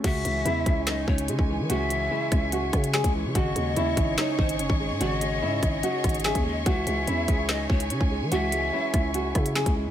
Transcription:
0.04 C#2 C#3 F#4 G#4 C#5 E5 G#5 C#6, kick, closed hi-hat, crash
0.25 C#2 E3, closed hi-hat
0.45 E2 G#3 E4, closed hi-hat
0.66 C#2 C#4, kick, closed hi-hat
0.87 D#4 D#5, snare, clap, closed hi-hat
1.08 C#2 C#4 C#5, kick
1.18 closed hi-hat
1.28 C#3 G#3, closed hi-hat
1.39 C#2, kick
1.49 E3
1.59 E3
1.69 C#2 C#3 F#4 E5, closed hi-hat
1.90 E3, closed hi-hat
2.11 G#3 E4
2.32 C#2 C#4, kick, cross-stick, closed hi-hat
2.52 F#4, closed hi-hat
2.73 C#3 C#4, kick, cross-stick, closed hi-hat
2.84 closed hi-hat
2.94 G#3 G#4, snare, clap
3.04 C#2, kick, closed hi-hat
3.15 E3
3.25 C#3
3.35 G#1 C#3 F#4 D#5, kick, closed hi-hat
3.56 D#2 G#3, closed hi-hat
3.76 D#2 C#4 E4, closed hi-hat
3.97 G#1 D#4, kick, closed hi-hat
4.18 D#4 C#5, snare, clap, closed hi-hat
4.38 G#1 D#4 C5, kick
4.49 closed hi-hat
4.59 F#1 C#4, closed hi-hat
4.70 G#1, kick
4.80 G#3
4.90 G#2
5.00 G#1 C#3 F#4 D5, closed hi-hat
5.14 D#5
5.21 G#3, closed hi-hat
5.42 G#2 C#4 E4
5.63 G#1 D#4, kick, cross-stick, closed hi-hat
5.83 F#4, closed hi-hat
6.04 G#1 D#4, kick, cross-stick, closed hi-hat
6.09 closed hi-hat
6.14 closed hi-hat
6.20 closed hi-hat
6.25 C#4 G#4 E5, snare, clap
6.35 D#2, kick, closed hi-hat
6.46 G#3 D#5
6.66 C#2 E3 F#4 E5 G#5, kick, closed hi-hat
6.87 C#2 G#3, closed hi-hat
7.07 E2 C#4 E4, closed hi-hat
7.28 C#2 G#4, kick, closed hi-hat
7.49 D#4 D#5, snare, clap, closed hi-hat
7.70 C#2 C#5, kick
7.80 closed hi-hat
7.90 C#3 C#4, closed hi-hat
8.01 C#2, kick
8.11 G#3
8.21 E3
8.32 C#2 E3 F#4 E5, closed hi-hat
8.52 G#3, closed hi-hat
8.73 C#4 E4
8.94 C#2 E4, kick, cross-stick, closed hi-hat
9.14 F#4, closed hi-hat
9.35 C#3 E4, kick, cross-stick, closed hi-hat
9.46 closed hi-hat
9.55 C#4 G#4, snare, clap
9.66 C#2, kick, closed hi-hat
9.77 G#3
9.87 C#3

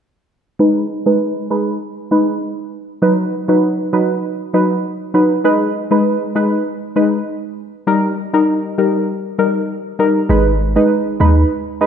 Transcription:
0.59 G#3 D#4 B4
1.06 G#3 D#4 B4
1.50 G#3 D#4 B4
2.11 G#3 D#4 B4
3.02 F#3 D#4 B4
3.48 F#3 D#4 B4
3.93 F#3 D#4 B4
4.53 F#3 D#4 B4
5.14 F#3 D#4 B4
5.44 G#3 D#4 B4
5.91 G#3 D#4 B4
6.35 G#3 D#4 B4
6.96 G#3 D#4 B4
7.87 G3 D#4 A#4
8.33 G3 D#4 A#4
8.78 G3 D#4 A#4
9.38 G3 D#4 A#4
9.99 G3 D#4 A#4
10.29 G#1 G#3 D#4 B4
10.76 G#3 D#4 B4
11.20 D#2 G#3 D#4 B4
11.81 G#3 D#4 B4

